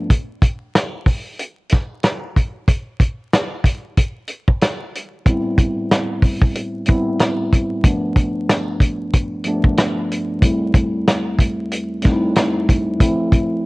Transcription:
0.00 0.12 G2 medium
0.00 0.12 F3 medium
0.00 0.12 A3 medium
0.00 0.12 B3 medium
0.00 0.12 D4 medium
0.10 kick loud
0.10 closed hi-hat medium
0.42 kick loud
0.42 closed hi-hat medium
0.75 cross-stick medium
0.75 snare loud
0.75 closed hi-hat medium
1.06 kick medium
1.06 open hi-hat medium
1.39 closed hi-hat medium
1.69 kick loud
1.69 snare soft
1.69 closed hi-hat medium
2.03 cross-stick medium
2.03 snare loud
2.03 closed hi-hat medium
2.36 kick medium
2.36 closed hi-hat medium
2.68 kick loud
2.68 closed hi-hat medium
3.00 kick loud
3.00 closed hi-hat medium
3.33 cross-stick medium
3.33 snare loud
3.33 closed hi-hat medium
3.64 kick medium
3.64 closed hi-hat medium
3.97 kick medium
3.97 closed hi-hat loud
4.28 closed hi-hat medium
4.48 kick medium
4.61 cross-stick medium
4.61 snare loud
4.61 closed hi-hat medium
4.95 closed hi-hat medium
5.25 6.12 A2 medium
5.25 6.12 G3 medium
5.25 6.13 B3 medium
5.25 6.13 C4 medium
5.25 6.13 E4 medium
5.25 kick loud
5.25 closed hi-hat loud
5.58 kick loud
5.58 closed hi-hat medium
5.91 cross-stick medium
5.91 snare loud
5.91 closed hi-hat medium
6.22 kick medium
6.22 open hi-hat medium
6.42 kick medium
6.55 closed hi-hat loud
6.86 7.50 A2 medium
6.86 7.51 G3 medium
6.86 7.51 B3 medium
6.86 7.52 C4 medium
6.86 kick loud
6.86 closed hi-hat medium
6.90 7.52 E4 loud
7.19 cross-stick medium
7.19 snare loud
7.19 closed hi-hat medium
7.53 kick medium
7.53 closed hi-hat medium
7.83 8.69 G2 medium
7.83 8.70 F3 medium
7.83 8.70 A3 medium
7.83 8.71 B3 medium
7.83 8.71 D4 medium
7.83 kick loud
7.83 closed hi-hat medium
8.16 kick loud
8.16 closed hi-hat medium
8.49 cross-stick medium
8.49 snare loud
8.49 closed hi-hat medium
8.80 kick medium
8.80 closed hi-hat medium
9.13 kick loud
9.13 closed hi-hat medium
9.44 10.08 G2 medium
9.44 10.09 F3 medium
9.44 10.09 A3 medium
9.44 10.10 B3 medium
9.44 closed hi-hat medium
9.48 10.10 D4 medium
9.64 kick medium
9.77 cross-stick medium
9.77 snare loud
9.77 closed hi-hat medium
10.12 closed hi-hat medium
10.40 11.27 F2 medium
10.40 11.27 G3 medium
10.40 11.28 A3 medium
10.40 11.28 C4 medium
10.40 11.29 E4 medium
10.40 kick loud
10.40 closed hi-hat loud
10.74 kick loud
10.74 closed hi-hat medium
11.07 cross-stick medium
11.07 snare loud
11.07 closed hi-hat medium
11.38 kick medium
11.38 closed hi-hat medium
11.71 closed hi-hat medium
12.02 12.66 F2 medium
12.02 12.67 G3 medium
12.02 12.67 A3 medium
12.02 12.68 C4 medium
12.02 12.12 D#4 medium
12.02 kick loud
12.02 snare soft
12.02 closed hi-hat medium
12.12 12.71 E4 medium
12.35 cross-stick medium
12.35 snare loud
12.35 closed hi-hat medium
12.69 kick medium
12.69 closed hi-hat medium
12.97 13.66 D2 medium
12.97 13.07 E3 medium
12.97 13.66 A3 medium
12.97 13.66 C4 medium
12.97 13.66 E4 medium
12.97 kick loud
12.97 closed hi-hat loud
13.05 13.66 F3 medium
13.32 kick loud
13.32 closed hi-hat medium

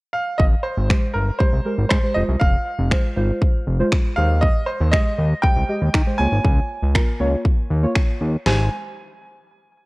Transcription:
0.13 0.39 F5 medium
0.38 0.55 G#1 loud
0.38 0.44 D#5 medium
0.38 kick loud
0.63 1.16 C5 medium
0.77 0.93 G#1 loud
0.89 1.24 G#3 medium
0.89 1.24 G4 medium
0.89 1.24 C5 medium
0.89 finger snap loud
0.89 kick loud
1.13 1.31 G1 medium
1.13 1.40 A#4 medium
1.39 1.57 G#3 medium
1.39 1.57 G4 medium
1.39 1.88 C5 medium
1.39 1.57 C5 medium
1.39 kick loud
1.53 1.61 C2 medium
1.65 1.91 G#3 medium
1.65 1.91 G4 medium
1.65 1.91 A#4 medium
1.78 1.86 G#1 medium
1.89 1.99 G#2 medium
1.89 2.16 C5 medium
1.89 finger snap loud
1.89 kick loud
2.03 2.14 G#3 medium
2.03 2.16 G4 medium
2.03 2.15 C5 medium
2.14 2.24 F1 medium
2.14 2.76 G#3 medium
2.14 2.76 F4 medium
2.14 2.76 C5 medium
2.14 2.20 D#5 medium
2.28 2.36 C2 medium
2.39 2.57 F1 loud
2.39 4.15 F5 loud
2.39 kick loud
2.79 2.95 F1 loud
2.91 3.08 G#3 medium
2.91 3.09 F4 medium
2.91 3.09 C5 medium
2.91 finger snap loud
2.91 kick loud
3.16 3.32 G#1 medium
3.16 3.59 G#3 medium
3.16 3.59 F4 medium
3.16 3.60 C5 loud
3.42 kick loud
3.67 3.83 F1 medium
3.79 4.16 G#3 loud
3.79 4.17 F4 medium
3.79 4.17 C5 loud
3.92 finger snap loud
3.92 kick loud
4.16 4.49 D#2 loud
4.16 4.78 G#3 medium
4.16 4.78 G4 medium
4.16 4.78 C5 medium
4.16 4.40 F5 medium
4.41 4.68 D#5 loud
4.41 kick loud
4.66 4.93 C5 medium
4.81 4.96 D#2 loud
4.92 5.27 G#3 medium
4.92 5.27 G4 medium
4.92 5.44 D#5 loud
4.92 5.27 D#5 medium
4.92 finger snap loud
4.92 kick loud
5.19 5.34 D#2 medium
5.42 5.61 G#3 medium
5.42 5.61 G4 medium
5.42 5.61 C5 medium
5.42 6.21 G5 loud
5.42 kick loud
5.56 5.64 C2 medium
5.68 5.94 G#3 medium
5.68 5.94 G4 medium
5.68 5.95 D#5 medium
5.82 5.89 D#2 medium
5.94 6.02 D#3 loud
5.94 finger snap loud
5.94 kick loud
6.06 6.19 G#3 medium
6.06 6.19 G4 medium
6.06 6.19 C5 medium
6.18 6.27 C#2 medium
6.18 6.80 A#3 medium
6.18 6.80 F4 medium
6.18 6.80 C#5 medium
6.18 7.91 G#5 loud
6.32 6.40 G#1 medium
6.44 6.60 C#2 loud
6.44 kick loud
6.82 6.98 C#2 loud
6.95 7.12 A#3 medium
6.95 7.12 F4 medium
6.95 7.12 A#4 loud
6.95 finger snap loud
6.95 kick loud
7.20 7.36 C#2 medium
7.20 7.63 A#3 medium
7.20 7.63 F4 medium
7.20 7.63 C#5 loud
7.45 kick loud
7.71 7.86 D#2 medium
7.83 8.46 A#3 loud
7.83 8.46 F4 medium
7.83 8.46 C#5 loud
7.95 finger snap loud
7.95 kick loud
8.21 8.37 D#2 medium
8.46 8.70 G#1 loud
8.46 8.70 G#3 medium
8.46 8.70 G4 medium
8.46 8.70 C5 medium
8.46 8.70 G#5 medium
8.46 snare loud
8.46 open hi-hat medium

